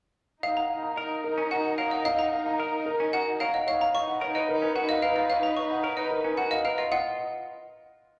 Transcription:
0.43 D#4 A#4 D#5 F5
0.56 F#5 A#5
0.70 D#4 F5
0.83 A#5
0.97 D#4 A#4 D#5
1.24 D#4 A#4
1.38 C#4
1.51 F#4 A#4 F#5
1.56 D#4
1.78 A#4 C#5 F5
1.84 D#4
1.91 D#5 F#5
2.05 D#5 F5
2.13 D#4
2.19 F#5 A#5
2.33 F5
2.41 D#4
2.46 A#5
2.59 A#4 D#5
2.70 D#4
2.86 A#4
2.97 C#4 D#4
3.13 F#4 A#4 F#5
3.26 D#4
3.40 A#4 C#5 F5
3.54 D#5 F#5
3.67 D#4 B4 C#5 F5
3.81 F5 A#5
3.94 D#4 D#5 C#6
4.08 F#5
4.21 D#4 A#4 C#5
4.35 D#4 B4 D#5
4.49 A#4
4.53 D#4
4.62 C#4 B4
4.75 F#4 A#4 F#5
4.81 D#4
4.89 D#5 F5
5.02 A#4 B4 F5
5.09 D#4
5.16 F4 D#5 F5
5.30 C#5 F5
5.38 D#4
5.43 F5 A#5
5.57 D#5 C#6
5.66 D#4
5.71 F#5
5.84 A#4 C#5
5.94 D#4 B4 D#5
6.11 A#4
6.22 C#4 D#4 B4
6.37 F#4 A#4 F#5
6.50 D#4 D#5 F5
6.64 A#4 B4 F5
6.78 F4 D#5 F5
6.91 F4 D#5 F#5

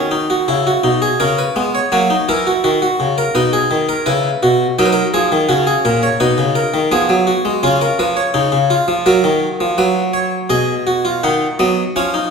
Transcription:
Already playing: D#3 C#4
0.11 D#4
0.30 F#4
0.48 C#3 E4
0.67 F#4
0.84 B2 D#4
1.02 G#4
1.20 C#3 C#4 A#4
1.38 B4
1.56 G#3 B3
1.75 C#5
1.92 F#3 A#3 F#4
2.10 D#4
2.29 E3 E4 A#4
2.47 F#4
2.64 D#3 F#4
2.82 F#4
3.00 C#3
3.18 A#4
3.35 B2 D#4 B4
3.53 G#4
3.71 D#3
3.89 A#4
4.06 C#3 E4 B4
4.43 B2 F#4
4.79 F#3 D#4 A#4
4.86 B4
4.93 A#4
5.14 F3 G#4
5.32 D#3
5.49 C#3 C#4 F#4
5.67 G#4
5.85 A#2 A#4
6.03 C#5
6.20 B2 D#4 B4
6.38 C#3
6.55 A#4
6.74 D#3
6.92 F3 B3 G#4
7.09 F#3
7.27 F#4
7.45 G#3
7.63 C#3 C#4 F4
7.81 A#4
7.99 F3 B4
8.17 C#5
8.34 C#3 D#4
8.52 C#3
8.70 F4
8.88 F3
9.06 F#3 F#4 A#4
9.24 D#3
9.60 F3
9.78 F#3 B4
10.14 C#5
10.50 B2 G#4 D#5
10.87 F#4
11.05 F4
11.23 D#3 D#4 F#5
11.59 F#3 B3 D#5
11.96 F3 C#4 F5
12.14 D#4

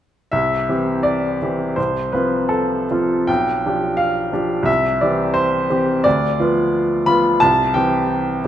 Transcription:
0.32 C2 E5
0.69 E3 C4 G4
1.03 D5
1.42 E3 C4 G4
1.76 C2 C5
2.12 F3 C4 F4 B4
2.49 A4
2.91 F3 C4 F4
3.27 B1 G5
3.66 F3 D4 G4
3.97 F5
4.32 F3 D4 G4
4.63 C2 E5
5.01 E3 C4 G4 D5
5.34 C5
5.70 E3 C4 G4
6.04 D2 D5
6.40 F3 B3 F4
7.06 F3 B3 F4 B5
7.40 C2 A5
7.74 E3 C4 G4 G5

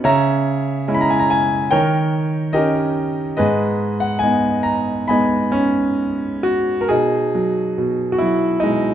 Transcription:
0.04 C#3 C#5 E5 A#5
0.88 G#3 C#4 E4
0.94 B5
1.01 A#5
1.10 G#5
1.19 A#5
1.30 G#5
1.71 D#3 A#4 C#5 G5
2.53 C#4 D#4 G4 A#4 D#5
3.37 G#2 G#4 B4 D#5
4.00 F#5
4.19 G#5
4.23 G#3 B3 D#4
4.63 A#5
5.08 G#3 B3 D#4 D#5 G#5 B5
5.52 C#4
6.43 F#4
6.81 A#4
6.89 B2 D#4 G#4
7.35 F#3
7.78 B2
8.12 F#4
8.18 F#3 E4
8.60 G#3 D#4
8.66 B2

